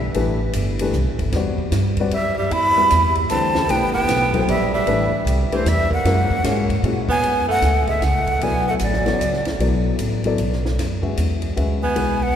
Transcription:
Already playing: upright bass B1
0.14 upright bass A1, grand piano E3 A3 D4 G4 B4, ride
0.53 upright bass G1, hi-hat pedal, ride
0.79 grand piano E3 A3 D4 G4 B4, ride
0.93 upright bass C2, hi-hat pedal
1.07 upright bass A1
1.19 upright bass G1, kick, ride
1.32 upright bass E2, grand piano G3 C4 F#4 B4 D5, snare, ride
1.58 kick
1.71 upright bass G2, snare, hi-hat pedal, ride
1.97 grand piano G3 C4 F#4 B4 D5, kick, ride
2.11 upright bass F#2, tenor saxophone G3, flute E5, ride
2.38 tenor saxophone G3, flute E5
2.51 upright bass E2, tenor saxophone E4, flute B5, ride
2.77 grand piano G3 C4 F#4 B4 D5
2.90 upright bass E2, hi-hat pedal, ride
3.15 ride
3.30 upright bass D2, grand piano E3 A3 D4 G4 B4, tenor saxophone C4, flute A5, hi-hat pedal, ride
3.55 snare
3.67 upright bass C2, grand piano E3 A3 D4 G4 B4, tenor saxophone B3, flute G5, ride
3.82 upright bass A1
3.93 upright bass G1, tenor saxophone B3, flute G5
4.08 upright bass B1, snare, hi-hat pedal, ride
4.33 grand piano F#3 B3 E4 A4 C5, kick, ride
4.48 upright bass A#1, tenor saxophone G3, flute E5, ride
4.74 tenor saxophone G3, flute E5
4.86 upright bass A1, grand piano E3 A3 D4 G4 B4, ride
5.12 muted upright bass stroke
5.25 upright bass C2, hi-hat pedal, ride
5.50 tenor saxophone E3, grand piano E3 A3 D4 G4 B4, flute C5, muted upright bass stroke, ride
5.66 upright bass E2, tenor saxophone G3, flute E5, snare, hi-hat pedal, ride
5.90 tenor saxophone A#3, flute F#5, kick
6.05 upright bass F#2, grand piano G#3 C#4 E4 F#4 A#4, snare, ride
6.30 muted upright bass stroke, kick
6.44 upright bass G#2, grand piano G#3 C#4 E4 F#4 C#5, snare, hi-hat pedal, ride
6.70 kick, ride
6.83 upright bass A#2, grand piano G#3 C#4 E4 F#4 C#5, ride
7.09 tenor saxophone B3, flute G#5, kick
7.23 upright bass F#2, ride
7.48 tenor saxophone A3, flute F#5
7.62 upright bass D2, snare, hi-hat pedal, ride
7.87 tenor saxophone G#3, flute E5, kick, ride
8.01 upright bass C#2, flute F#5, snare, hi-hat pedal, ride
8.05 tenor saxophone A3
8.27 kick, ride
8.41 upright bass B1, grand piano F#3 B3 E4 A4 D5, tenor saxophone B3, flute G#5, ride
8.68 tenor saxophone A3, flute F#5
8.79 upright bass A1, tenor saxophone F#3, flute D5, hi-hat pedal, ride
8.93 snare
9.06 grand piano F#3 B3 E4 A4 C#5, snare, ride
9.20 upright bass C#2, hi-hat pedal, ride
9.33 snare
9.45 snare, ride
9.59 upright bass B1, grand piano F#3 B3 E4 A4 D5, ride
9.99 upright bass A1, hi-hat pedal, ride
10.24 grand piano F#3 B3 E4 A4 D5, ride
10.38 upright bass B1, hi-hat pedal, ride
10.53 snare
10.66 snare
10.78 upright bass F#2, snare, ride
11.02 grand piano G#3 C#4 F#4 B4 E5, kick
11.17 upright bass E2, hi-hat pedal, ride
11.42 ride
11.56 upright bass D2, grand piano G#3 C#4 F#4 B4 E5, ride
11.83 tenor saxophone B3, flute G#5
11.95 upright bass B1, grand piano G#3 B3 E4 F#4 B4, ride
12.23 tenor saxophone B3, flute F#5

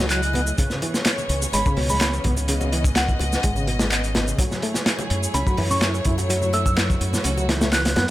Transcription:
Already playing: fingered electric bass C#2, string section F#3 A3 E4 G#4 D#5
0.10 reed electric piano F#3, synth bell F#6, clap, closed hi-hat, muted conga, shaker
0.23 closed hi-hat, shaker
0.33 reed electric piano B3, closed hi-hat, muted conga, high conga, low conga
0.47 reed electric piano A3, shaker
0.58 reed electric piano C#3, string section E3 B3 C#4 C#5, kick, closed hi-hat, muted conga, shaker
0.70 snare, high conga, shaker
0.82 reed electric piano E3, closed hi-hat, muted conga
0.94 snare, shaker
1.05 snare, clap, closed hi-hat, shaker
1.18 muted conga, high conga, shaker
1.29 fingered electric bass C#2, closed hi-hat
1.42 muted conga, shaker
1.52 fingered electric bass G#1, reed electric piano G#3, synth bell B5, closed hi-hat, high conga, shaker
1.66 reed electric piano C#3, synth bell B5, kick, shaker
1.77 fingered electric bass C#2, reed electric piano B2, open hi-hat, muted conga
1.89 reed electric piano G#3, synth bell B5, high conga, low conga, shaker
2.00 reed electric piano B3, synth bell B5, snare, clap, closed hi-hat, muted conga, shaker
2.13 shaker
2.24 fingered electric bass C#2, reed electric piano B3, kick, closed hi-hat, high conga, low conga
2.37 reed electric piano C#3, closed hi-hat, muted conga, shaker
2.48 reed electric piano C#3, string section D#5, closed hi-hat, shaker
2.61 muted conga, high conga, shaker
2.72 reed electric piano E3, closed hi-hat
2.84 kick, shaker
2.96 synth bell F#5, snare, clap, closed hi-hat, muted conga, shaker
3.09 kick, high conga, shaker
3.19 fingered electric bass C#2, closed hi-hat, muted conga
3.32 snare, shaker
3.43 fingered electric bass G#1, reed electric piano G#3, kick, closed hi-hat, high conga, shaker
3.56 reed electric piano C#3, muted conga, shaker
3.67 reed electric piano B2, closed hi-hat
3.79 reed electric piano G#3, snare, muted conga, high conga, low conga, shaker
3.92 reed electric piano B3, clap, closed hi-hat, shaker
4.04 closed hi-hat, shaker
4.15 reed electric piano B3, snare, closed hi-hat, muted conga, high conga, low conga
4.28 reed electric piano C#3, shaker
4.38 string section F#3 A3 E4 G#4 C#5, reed electric piano F#3, kick, closed hi-hat, muted conga, shaker
4.51 snare, high conga, shaker
4.62 reed electric piano A3, closed hi-hat
4.74 snare, muted conga, shaker
4.86 snare, clap, closed hi-hat, shaker
4.99 muted conga, high conga, shaker
5.10 fingered electric bass F#2, closed hi-hat
5.23 shaker
5.34 fingered electric bass C#2, reed electric piano C#4, synth bell B5, closed hi-hat, muted conga, high conga, shaker
5.47 reed electric piano F#3, synth bell B5, kick, shaker
5.57 fingered electric bass F#2, reed electric piano E3, open hi-hat, muted conga
5.70 reed electric piano C#4, synth bell C#6, high conga, low conga, shaker
5.82 reed electric piano E4, synth bell C#6, snare, clap, closed hi-hat, shaker
5.94 muted conga, shaker
6.05 fingered electric bass F#2, reed electric piano E4, kick, closed hi-hat, high conga, low conga
6.18 reed electric piano F#3, closed hi-hat, muted conga, shaker
6.30 reed electric piano F#3, string section F#4, closed hi-hat, shaker
6.42 high conga, shaker
6.53 reed electric piano A3, synth bell E6, closed hi-hat, muted conga
6.66 synth bell E6, kick, shaker
6.77 snare, clap, closed hi-hat, muted conga, shaker
6.90 kick, high conga, shaker
7.01 fingered electric bass F#2, closed hi-hat
7.13 snare, muted conga, low conga, shaker
7.24 fingered electric bass C#2, reed electric piano C#4, closed hi-hat, high conga, shaker
7.38 reed electric piano F#3, muted conga, shaker
7.49 reed electric piano E3, snare, closed hi-hat
7.61 reed electric piano A3, snare, high conga, low conga, shaker
7.72 reed electric piano E3, synth bell F#6, snare, clap, closed hi-hat, muted conga, shaker
7.85 reed electric piano F#3, snare, closed hi-hat, shaker
7.96 fingered electric bass F#2, reed electric piano B3, snare, closed hi-hat, muted conga, high conga, low conga

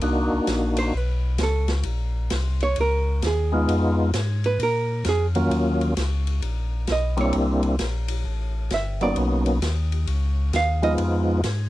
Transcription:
Already playing: hollow-body jazz guitar A#4
0.01 tonewheel organ C2 A#3 D4 D#4 F#4, ride
0.33 tonewheel organ C2
0.47 tonewheel organ A#1, snare, hi-hat pedal, ride
0.77 hollow-body jazz guitar C5, ride
0.94 tonewheel organ B1, hollow-body jazz guitar B4
1.38 tonewheel organ C#2, snare, hi-hat pedal, ride
1.43 hollow-body jazz guitar A4
1.68 snare, ride
1.83 tonewheel organ A#1, ride
2.30 tonewheel organ C2, snare, hi-hat pedal, ride
2.60 hollow-body jazz guitar C#5, ride
2.76 tonewheel organ C#2, ride
2.81 hollow-body jazz guitar A#4
3.22 tonewheel organ D#2, snare, hi-hat pedal, ride
3.27 hollow-body jazz guitar G#4
3.52 tonewheel organ G#3 B3 D#4 F4
3.68 tonewheel organ F2, ride
4.13 tonewheel organ G#2, snare, hi-hat pedal, ride
4.44 hollow-body jazz guitar B4, ride
4.59 tonewheel organ A#2, hollow-body jazz guitar A#4, ride
5.05 tonewheel organ F2, snare, hi-hat pedal, ride
5.09 hollow-body jazz guitar G#4
5.35 tonewheel organ D#2 F#3 A#3 C#4 F4, ride
5.51 tonewheel organ D#2, ride
5.81 ride
5.97 tonewheel organ C#2, snare, hi-hat pedal, ride
6.27 ride
6.42 tonewheel organ A#1, ride
6.87 tonewheel organ B1, snare, hi-hat pedal, ride
6.92 hollow-body jazz guitar D#5
7.17 tonewheel organ G3 A#3 C4 D4 E4, hollow-body jazz guitar C#5, ride
7.33 tonewheel organ C2, ride
7.63 ride
7.79 tonewheel organ A#1, snare, hi-hat pedal, ride
8.08 ride
8.25 tonewheel organ A1
8.70 tonewheel organ G1, hollow-body jazz guitar E5, snare, hi-hat pedal, ride
9.01 tonewheel organ F#3 A#3 B3 C#4 D#4, hollow-body jazz guitar D5, ride
9.16 tonewheel organ B1, ride
9.46 ride
9.62 tonewheel organ D#2, snare, hi-hat pedal, ride
9.92 ride
10.07 tonewheel organ C#2, ride
10.53 tonewheel organ D#2, hollow-body jazz guitar F5, snare, hi-hat pedal, ride
10.82 tonewheel organ F3 G#3 B3 D#4 F4, hollow-body jazz guitar D#5, ride
10.98 tonewheel organ F2, ride
11.44 tonewheel organ G#2, snare, hi-hat pedal, ride

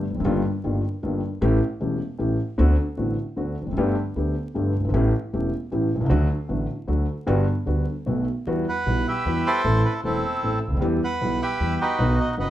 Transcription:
0.10 upright bass E1, grand piano E2
0.15 upright bass F1, grand piano F2
0.20 upright bass F#1, grand piano F#2
0.24 upright bass G1, grand piano G1 G2 D#3 G3 A#3 F4
0.64 upright bass G1, grand piano G1 G2 D#3 G3 A#3 F4
1.03 upright bass G1, grand piano G1 G2 D#3 G3 A#3 F4
1.41 grand piano A1 A2 E3 A3 C#4 G4, upright bass A1
1.80 upright bass E1, grand piano E1 E2 E3 A3 C#4 G4
2.18 grand piano A1 A2 E3 A3 C#4 G4, upright bass A1
2.58 grand piano D2 D3 A3 C4 F#4, upright bass D2
2.97 upright bass A1, grand piano A1 A2 D3 A3 C4 F#4
3.36 upright bass D2, grand piano D2 D3 A3 C4 F#4
3.62 upright bass E1, grand piano E2
3.67 upright bass F1, grand piano F2
3.71 upright bass F#1, grand piano F#2
3.77 upright bass G1, grand piano G1 G2 D3 A3 B3 G4
4.16 upright bass D2, grand piano D2 D3 A3 B3 G4
4.54 grand piano G1 G2 D3 A3 B3 G4, upright bass G1
4.80 upright bass F#1, grand piano F#1
4.84 grand piano G1, upright bass G1
4.88 grand piano G#1, upright bass G#1
4.94 grand piano A1 A2 E3 A3 C#4 G4, upright bass A1
5.33 upright bass E1, grand piano E1 E2 E3 A3 C#4 G4
5.71 grand piano A1 A2 E3 A3 C#4 G4, upright bass A1
5.95 grand piano B1, upright bass B1
6.00 grand piano C2, upright bass C2
6.04 grand piano C#2, upright bass C#2
6.09 grand piano D2 D3 F#3 A3 F#4, upright bass D2
6.49 grand piano A1 A2 D3 F#3 A3 F#4, upright bass A1
6.87 grand piano D2 D3 F#3 A3 F#4, upright bass D2
7.26 grand piano G1 G2 D3 G3 B3 F#4, upright bass G1
7.66 grand piano D2 D3 G3 B3 F#4, upright bass D2
8.06 grand piano B1 B2 D#3 A3 B3 F#4, upright bass B1
8.47 upright bass E2, grand piano E2 E3 G3 B3 F#4
8.69 bandoneon B4 F#5
8.86 upright bass B1, grand piano B1 B2 E3 G3 B3 F#4
9.08 bandoneon G4 B4 E5
9.25 grand piano E2 E3 G3 B3 F#4, upright bass E2
9.47 bandoneon E4 A4 C5
9.64 upright bass A1, grand piano A1 A2 E3 A3 C4 A4
9.85 bandoneon B4
10.04 grand piano E1 E2 E3 A3 C4 A4, upright bass E1, bandoneon C4 E4 A4
10.43 upright bass A1, grand piano A1 A2 E3 A3 C4 A4
10.67 upright bass C#2, grand piano C#2
10.72 upright bass D2, grand piano D2
10.77 upright bass D#2, grand piano D#2 G3
10.81 grand piano E2 E3 B3 G4, upright bass E2
11.04 bandoneon B4 F#5
11.21 upright bass B1, grand piano B1 B2 E3 G3 B3 G4
11.42 bandoneon G4 B4 E5
11.60 upright bass E2, grand piano E2 E3 G3 B3 G4
11.81 bandoneon D#4 F#4 B4
11.99 upright bass B1, grand piano B1 B2 D#3 F#3 B3 F#4
12.21 bandoneon D#5
12.37 grand piano F#1 F#2 D#3 F#3 B3 F#4, upright bass F#1, bandoneon B4 D#5 F#5

